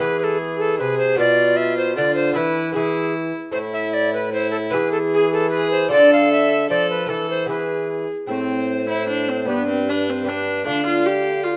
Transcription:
0.00 E3 B3 E4 G#4 B4
0.20 B4
0.24 A4
0.39 G#4
0.59 A4
0.78 C3 G#4 B4
0.98 C5
1.16 B2 B3 F4 B4 D5
1.57 E5
1.77 C5
1.95 D3 F4 D5
2.15 C5
2.33 E3 B3 E4 A4 B4
2.37 E3
2.73 E3 B3 E4 G#4
3.51 A2 A3 E4 A4 C5
3.73 E5
3.94 D5
4.14 B4
4.33 E4 C5
4.51 A4
4.70 E3 B3 E4 G#4 B4
4.75 E3
4.92 A4
5.14 G#4
5.33 A4
5.50 G#4 B4
5.71 C5
5.88 D3 D4 F4 A4 D5
5.93 D3
6.13 F5
6.33 E5
6.69 F3 A4 D5
6.90 B4
7.06 E3 B3 E4 A4
7.30 C5
7.46 E3 B3 E4 G#4 B4
8.27 A2 C4 E4 C5
8.89 E4
9.09 D4
9.29 C4
9.45 G2 B3 D4 G4 B4
9.68 C4
9.89 D4
10.09 C4
10.24 B3 D4 G4 B4
10.28 D4
10.64 D3 A3 D4 F4 F5
10.87 F4
11.06 G4
11.43 F4 F5

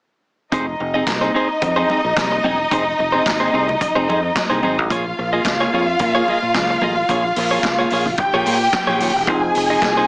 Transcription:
0.52 F1 C4 D#4 G#4 C5 D#5, kick, closed hi-hat
0.67 muted clean electric guitar stroke
0.80 F1, muted clean electric guitar stroke
0.94 C4 D#4 G#4 D#5
1.07 C2, muted clean electric guitar stroke, kick, snare, clap, closed hi-hat, high conga
1.21 C4 D#4 G#4 C5
1.34 C4 D#4 G#4 C5
1.49 muted clean electric guitar stroke
1.62 F2, muted clean electric guitar stroke, kick, closed hi-hat, muted conga
1.76 C4 D#4 G#4 C5
1.90 C4 D#4 G#4 D#5, muted conga
2.04 A#1, muted clean electric guitar stroke
2.17 C2, muted clean electric guitar stroke, kick, snare, clap, closed hi-hat, high conga
2.32 muted clean electric guitar stroke
2.44 E1 C4 D#4 G#4 D#5, high conga
2.59 muted clean electric guitar stroke
2.71 F1 C4 D#4 G#4 C5, kick, closed hi-hat
2.85 muted clean electric guitar stroke
2.99 F1, muted clean electric guitar stroke, muted conga
3.12 C4 D#4 G#4 C5
3.26 G#1, muted clean electric guitar stroke, kick, snare, clap, closed hi-hat, high conga
3.40 C4 D#4 G#4 C5
3.53 C2 C4 D#4 G#4 C5
3.69 low conga
3.81 muted clean electric guitar stroke, kick, closed hi-hat, muted conga
3.95 F1 C4 D#4 G#4 C5
4.08 F2 C4 D#4 G#4 C5, muted conga
4.23 muted clean electric guitar stroke
4.35 muted clean electric guitar stroke, kick, snare, clap, closed hi-hat, high conga
4.50 C2 C4 D#4 G#4 C5
4.62 G#1 C4 D#4 G#4 C5, high conga
4.78 A1, muted clean electric guitar stroke
4.90 A#1 A#3 F4 G#4 C#5 F5, kick, closed hi-hat
5.19 A#1, muted clean electric guitar stroke
5.33 A#3 F4 G#4 D#5
5.45 C#2, muted clean electric guitar stroke, kick, snare, clap, closed hi-hat, high conga
5.60 A#3 F4 G#4 C#5
5.73 F2 A#3 F4 G#4 C#5
5.99 A#2, muted clean electric guitar stroke, kick, closed hi-hat, muted conga
6.15 A#3 F4 G#4 C#5
6.28 A#3 F4 G#4 D#5, muted conga
6.42 A#2, muted clean electric guitar stroke
6.54 C#2, muted clean electric guitar stroke, kick, snare, clap, closed hi-hat, high conga
6.70 muted clean electric guitar stroke
6.81 A1 A#3 F4 G#4 D#5, high conga
6.97 muted clean electric guitar stroke
7.09 A#1 A#3 F4 G#4 C#5, kick, closed hi-hat
7.24 muted clean electric guitar stroke
7.36 A#1, muted clean electric guitar stroke, open hi-hat
7.51 A#3 F4 G#4 C#5
7.63 C#2, muted clean electric guitar stroke, kick, snare, clap, closed hi-hat, high conga
7.79 A#3 F4 G#4 C#5
7.90 A#1 A#3 F4 G#4 C#5, open hi-hat
8.06 low conga
8.18 G4 G5, muted clean electric guitar stroke, kick, closed hi-hat, muted conga
8.33 A#1 A#3 F4 G#4 C#5
8.46 A#2 A#3 F4 G#4 C#5, open hi-hat, muted conga
8.61 muted clean electric guitar stroke
8.72 muted clean electric guitar stroke, kick, snare, clap, closed hi-hat, high conga
8.87 A#1 A#3 F4 G#4 C#5
8.98 D#1 A#3 F4 G#4, open hi-hat, high conga
9.03 C#5
9.15 E1, muted clean electric guitar stroke
9.26 F1 F3 C4 D#4 G#4 C5 G#5, kick, closed hi-hat
9.43 muted clean electric guitar stroke
9.55 F1, muted clean electric guitar stroke, open hi-hat
9.70 C4 D#4 G#4 D#5
9.82 C2, muted clean electric guitar stroke, kick, snare, clap, closed hi-hat, high conga
9.97 C4 D#4 G#4 C5

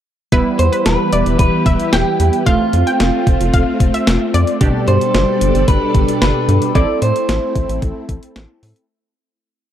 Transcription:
0.32 E1 G3 B3 E4 G4 B4, kick, closed hi-hat
0.59 E2 C5, closed hi-hat
0.72 B4, closed hi-hat
0.86 E1 B4, snare, closed hi-hat
1.13 E1 D5, closed hi-hat
1.26 E1, closed hi-hat
1.39 E1 B4, kick, closed hi-hat
1.66 E1 E5, kick, closed hi-hat
1.80 closed hi-hat
1.93 E1 G4 G5, snare, closed hi-hat
2.20 E2, closed hi-hat
2.33 closed hi-hat
2.46 F1 A3 C4 F4 F5, kick, closed hi-hat
2.73 F2, closed hi-hat
2.87 G5, closed hi-hat
3.00 F1, snare, closed hi-hat
3.27 F1, kick, closed hi-hat
3.40 F1, closed hi-hat
3.54 F1 F5, kick, closed hi-hat
3.80 F1, kick, closed hi-hat
3.94 E5, closed hi-hat
4.07 F1, snare, closed hi-hat
4.34 F2 D5, closed hi-hat
4.47 closed hi-hat
4.61 G1 B2 G3 D4 G4 A4 D5, kick, closed hi-hat
4.88 G2 C5, closed hi-hat
5.01 closed hi-hat
5.14 G1, snare, closed hi-hat
5.41 G1, closed hi-hat
5.55 G1, closed hi-hat
5.68 G1 B4, kick, closed hi-hat
5.95 G1, kick, closed hi-hat
6.08 closed hi-hat
6.22 G1 B4, snare, closed hi-hat
6.48 G2, closed hi-hat
6.62 closed hi-hat
6.75 A1 A3 C4 E4 A4 D5, kick, closed hi-hat
7.02 A2 C5, closed hi-hat
7.16 closed hi-hat
7.29 A1, snare, closed hi-hat
7.56 A1, kick, closed hi-hat
7.69 A1, closed hi-hat
7.82 A1, kick, closed hi-hat
8.09 A1, kick, closed hi-hat
8.23 closed hi-hat
8.36 A1, snare, closed hi-hat
8.63 A2, open hi-hat
8.76 closed hi-hat

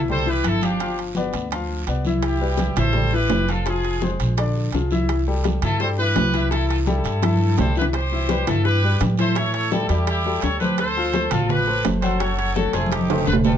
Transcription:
Already playing: C2
0.08 G3 G4 A4 C5, high conga, low conga, long guiro
0.26 E3 E4 G4 B4 E5, high conga
0.43 G1 E4 A4, high conga, high timbale, short guiro
0.61 F3 D4 F4 G4 F5, high conga, high timbale, short guiro
0.80 F3 F4 F5, high conga, high timbale, long guiro
0.98 high conga, high timbale
1.15 B3 B4 D5, high conga, short guiro
1.33 D2, high conga, high timbale, short guiro
1.51 F3 F4 F5, high conga, high timbale, long guiro
1.69 high conga
1.87 C2 B3 B4 D5, high conga, high timbale, short guiro
2.05 E3 E4 E5, high conga, short guiro
2.22 E4 G4, high bongo, high timbale, long guiro
2.40 G3 G4 B4, high bongo, high conga
2.57 high bongo, high conga, high timbale, short guiro
2.76 A1 E3 E4 A4 C5 E5, high conga, low conga, high timbale, short guiro
2.93 G3 G4 A4, high bongo, high conga, low conga, long guiro
3.12 E3 E4 G4 B4 E5, high bongo, high conga
3.30 F1, high bongo, low bongo, high conga, high timbale, low timbale, short guiro
3.48 F3 F4 A4 F5, high bongo, high timbale, short guiro
3.66 F3 F4 G#4 F5, high bongo, high timbale, long guiro
3.84 high bongo, high conga, high timbale
4.02 G#3 G#4 C5, high bongo, high conga, short guiro
4.20 A#1, high conga, high timbale, short guiro
4.37 D3 D4 D5, high bongo, high conga, high timbale, long guiro
4.56 high bongo, high conga
4.72 C2 F3 F4 G#4, high bongo, low bongo, high conga, high timbale, short guiro
4.91 E3 E4 E5, high bongo, high conga, short guiro
5.09 high bongo, high conga, high timbale, long guiro
5.27 G3 G4 A4, high bongo
5.44 high bongo, high conga, high timbale, short guiro
5.62 G2 E3 E4 F4 A4 E5, high conga, low conga, high timbale, short guiro
5.80 G3 G4 A4 C5, high bongo, high conga, long guiro
5.98 E3 E4 G4 B4 E5, high bongo, high conga
6.16 C2, high bongo, low bongo, high conga, high timbale, low timbale, short guiro
6.33 E3 E4 E5, high bongo, high timbale, short guiro
6.50 E3 E4 A4 E5, high bongo, high timbale, long guiro
6.67 F4 A4, high bongo, high conga, high timbale
6.85 G3 E4 G4 A4, high bongo, high conga, short guiro
7.04 G2, high conga, high timbale, short guiro
7.22 E3 E4 E5, high bongo, high conga, high timbale, long guiro
7.35 high conga
7.58 C2 G3 G4 A4 C5, low bongo, low conga, high timbale, low timbale, short guiro
7.76 E3 E4 G4 B4 E5, short guiro
7.81 low bongo, low conga
7.93 G4 C5, high bongo, high conga, high timbale, long guiro
8.11 E3 E4 E5, high bongo, high conga
8.29 G3 G4 B4, high bongo, high conga, high timbale, short guiro
8.47 G2 E3 E4 F4 A4 E5, high conga, low conga, high timbale, short guiro
8.64 G4 B4, high bongo, high conga, long guiro
8.82 G3 G4 B4, high bongo, high conga
9.00 A2, high bongo, low bongo, high conga, high timbale, short guiro
9.17 E3 E4 A4 C5 E5, high bongo, high conga, high timbale, short guiro
9.35 E3 E4 A4 C#5 E5, high bongo, high timbale, long guiro
9.54 A4 C#5, high bongo, high conga, high timbale
9.72 G3 E4 G4 A4, high bongo, high conga, short guiro
9.88 E2 G3 E4 G4 A4, high conga, high timbale, short guiro
10.07 E4 G4, high bongo, high conga, high timbale, long guiro
10.25 G3 G4 A4, high bongo, high conga
10.42 D2 A4 C#5, high bongo, low bongo, high conga, high timbale, short guiro
10.60 A3 G4 A4 B4 C5, high bongo, high conga, short guiro
10.77 A4 C5, high bongo, high conga, high timbale, long guiro
10.96 F3 F4 F5, high bongo, high conga
11.13 A3 A4 C5, high bongo, high conga, high timbale, short guiro
11.31 A1 F3 F4 A4 F5, high conga, low conga, high timbale, short guiro
11.48 G4 B4, high bongo, high conga, low conga, long guiro
11.67 A3 A4 C5, high bongo, high conga
11.85 F#1, high bongo, low bongo, high conga, high timbale, low timbale, short guiro
12.01 F#3 F#4 A4 C5 F#5, high bongo, high conga, high timbale, short guiro
12.18 F#3 F#4 A4 C#5 F#5, high bongo, high timbale, long guiro
12.37 A4 C#5, high bongo, high conga, high timbale
12.54 A3 F#4 A4 C#5, high bongo, high conga, short guiro
12.73 F1 A3 E4 G#4 A4 C5, high conga, high timbale, short guiro
12.86 high conga
12.91 D#4 G4, high bongo, high timbale, long guiro
12.98 high conga
13.10 A3 A4 C5, high bongo, low conga, high timbale
13.21 low conga, high timbale
13.26 E1 F4 B4, high bongo, low bongo, short guiro
13.33 low conga, low timbale
13.44 G3 F4 G4 A4 B4, high bongo, low conga, low timbale, short guiro

